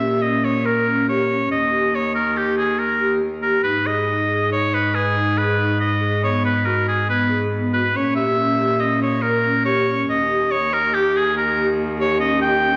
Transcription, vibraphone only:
0.00 G4
0.22 C#4
0.64 A#4
0.86 C#4
1.07 G4
1.28 C#4
1.71 G4
1.93 A#3
2.36 G4
2.79 A#3
3.00 G4
3.22 A#3
3.43 G4
3.64 D#4
3.86 G#4
4.07 D#4
4.29 G#4
4.50 D#4
4.94 B4
5.15 D#4
5.37 G#4
5.58 D#4
6.01 G#4
6.23 B3
6.66 F#4
7.09 B3
7.29 G#4
7.52 B3
7.73 F#4
7.94 C#4
8.15 G4
8.37 C#4
8.58 G4
8.79 C#4
9.22 A#4
9.43 C#4
9.65 G4
9.86 C#4
10.28 G4
10.49 A#3
10.92 G4
11.34 A#3
11.55 G4
11.76 A#3
11.97 G4
12.19 C#4
12.40 G4
12.62 C#4

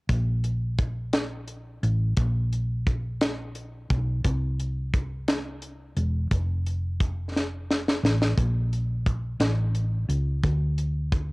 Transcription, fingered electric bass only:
0.10 A#1
1.83 A1
2.17 A#1
3.90 B1
4.24 C2
5.97 E1
6.31 F1
8.03 A1
8.37 A#1
9.40 A1
10.09 C#2
10.44 D2

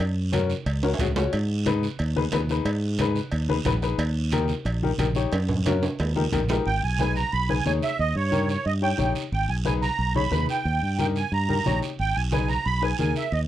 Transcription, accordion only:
6.66 G5
6.84 G#5
7.00 G#5
7.16 A#5
7.33 B5
7.49 G#5
7.65 G#5
7.83 E5
8.00 D#5
8.16 C#5
8.50 C#5
8.66 D#5
8.83 G5
9.33 G5
9.49 G#5
9.66 G#5
9.82 A#5
10.16 B5
10.50 G5
10.99 G5
11.17 G#5
11.33 A#5
12.00 G5
12.15 G#5
12.32 G#5
12.49 A#5
12.65 B5
12.83 G#5
12.99 G#5
13.17 E5
13.33 D#5

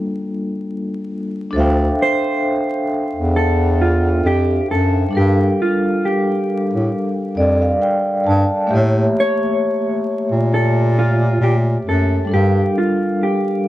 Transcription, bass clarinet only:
1.55 D2
3.15 E2
4.24 F2
4.69 F#2
5.14 G2
6.73 A2
7.38 F2
8.27 G2
8.72 A2
10.32 A#2
11.40 A#2
11.85 F#2
12.30 G2

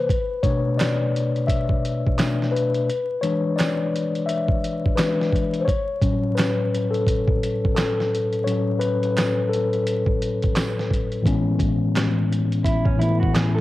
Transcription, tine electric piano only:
Already playing: B4 C5
0.43 B2 A3 D4 C#5
0.77 D5
1.47 E5
2.18 B2 A3 D4
2.52 B4
3.21 E3 G#3 D4 C#5
3.56 D5
4.26 E5
4.96 E3 G#3 D4 B4
5.60 C5
5.65 C#5
6.01 A2 F#3 C#4
6.35 B4
6.91 A4
7.75 A4
8.44 A2 F#3 C#4 C#5
8.79 B4
9.49 A4
11.22 A2 E3 G#3
11.26 B3 C#4
12.97 A2 E3 A3
13.01 B3 E4

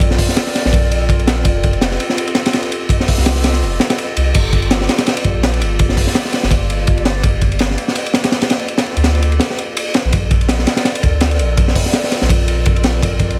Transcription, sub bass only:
Already playing: A#1
0.65 A#1
1.45 F1
3.18 C2
3.62 F1
4.16 C2
4.35 G1
5.25 A#1
5.61 G1
6.43 G1
7.24 G1
8.96 D2
10.04 A#1
10.13 A#1
11.03 D2
11.39 A#1
12.22 A#1
13.03 A#1

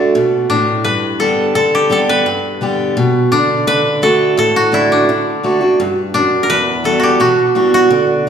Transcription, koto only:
Already playing: D4 F#4 A4
0.50 D4
0.84 B4
1.20 A4
1.55 A4
1.75 G4
1.92 A4
2.09 B4
3.32 D4
3.67 B4
4.03 A4
4.39 A4
4.56 F#4
4.74 E4
4.92 D4
6.14 D4
6.43 A#4
6.50 B4
6.85 A4
7.00 F#4 G4
7.21 F#4
7.74 F#4

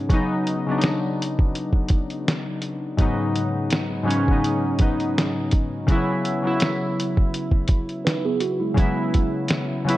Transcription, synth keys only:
Already playing: G#2 C#3 F#3 B3 C#4 F#4
0.09 C#3 F#3 B3
0.14 D#4
0.67 C#3 F#3 B3
0.71 D4
0.78 D#4
2.97 G#2 C#3 F#3 B3
3.02 D#4
4.03 G#2 C#3 F#3 B3
4.08 C#4
4.27 G#2 C#3 F#3 B3
4.33 D#4
4.78 G#2 C#3 F#3 B3
4.82 D#4
5.87 C#3 F#3 B3
5.92 E4
6.42 C#3 F#3 B3
6.47 E4
8.74 C#3 F#3 B3
8.79 E4
9.85 C#3 F#3 B3
9.90 E4

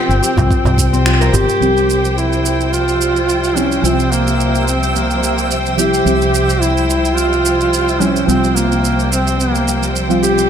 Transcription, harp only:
Already playing: C4 F4 G4 A#4
0.22 G4
0.37 F4
0.93 C4
1.06 F4
1.20 A#4
1.33 C4

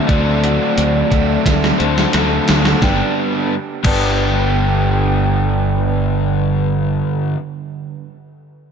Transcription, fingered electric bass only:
0.09 D2
0.78 D2
1.12 D2
1.46 D2
1.80 D2
2.14 D2
2.49 D2
2.82 G1
3.85 G1

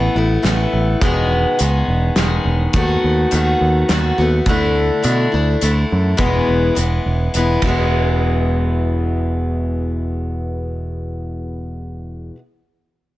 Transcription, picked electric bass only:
0.15 A1
0.44 A1
0.73 A1
1.02 E1
1.60 C#2
1.88 E1
2.17 E1
2.45 E1
2.74 D#2
3.04 D#2
3.32 D#2
3.61 D#2
3.89 D#2
4.18 D#2
4.46 D2
5.04 B2
5.34 D2
5.62 D2
5.92 F#2
6.19 E1
6.48 E1
6.77 E1
7.06 E1
7.35 E1
7.63 E1

